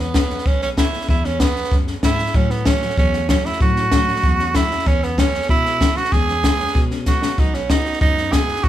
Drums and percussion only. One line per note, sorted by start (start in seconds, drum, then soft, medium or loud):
0.14 kick medium
0.14 snare loud
0.14 hi-hat pedal loud
0.30 snare soft
0.38 snare soft
0.46 kick loud
0.46 snare soft
0.61 snare soft
0.77 kick medium
0.77 snare loud
0.77 hi-hat pedal medium
0.93 snare soft
1.01 snare soft
1.09 kick loud
1.09 snare soft
1.24 snare soft
1.40 kick medium
1.40 snare loud
1.40 hi-hat pedal medium
1.56 snare soft
1.64 snare soft
1.71 kick loud
1.71 snare soft
1.87 snare soft
2.03 kick medium
2.03 snare loud
2.03 hi-hat pedal medium
2.18 snare soft
2.26 snare soft
2.34 kick loud
2.34 snare soft
2.50 snare soft
2.65 kick medium
2.65 snare loud
2.65 hi-hat pedal medium
2.82 snare soft
2.90 snare soft
2.97 kick loud
2.97 snare soft
3.13 snare soft
3.29 kick medium
3.29 snare loud
3.29 hi-hat pedal medium
3.45 snare soft
3.52 snare soft
3.60 kick loud
3.60 snare soft
3.76 snare soft
3.92 kick medium
3.92 snare loud
3.92 hi-hat pedal medium
4.08 snare soft
4.16 snare soft
4.23 kick loud
4.23 snare soft
4.39 snare soft
4.55 kick medium
4.55 snare medium
4.55 hi-hat pedal medium
4.71 snare soft
4.79 snare soft
4.86 kick loud
4.86 snare soft
5.03 snare soft
5.18 kick medium
5.18 snare loud
5.18 hi-hat pedal medium
5.34 snare soft
5.42 snare soft
5.49 kick loud
5.49 snare soft
5.65 snare soft
5.81 kick medium
5.81 snare loud
5.81 hi-hat pedal medium
5.97 snare soft
6.05 snare soft
6.12 kick loud
6.12 snare soft
6.28 snare soft
6.44 kick medium
6.44 snare loud
6.44 hi-hat pedal medium
6.60 snare soft
6.67 snare soft
6.75 kick loud
6.75 snare soft
6.91 snare soft
7.06 kick medium
7.06 snare medium
7.06 hi-hat pedal medium
7.22 snare medium
7.38 kick loud
7.38 snare soft
7.54 snare soft
7.70 kick medium
7.70 snare loud
7.70 hi-hat pedal medium
7.85 snare soft
7.93 snare soft
8.01 kick loud
8.01 snare soft
8.17 snare soft
8.33 kick medium
8.33 snare loud
8.33 hi-hat pedal medium
8.48 snare soft
8.56 snare soft
8.63 kick loud
8.63 snare soft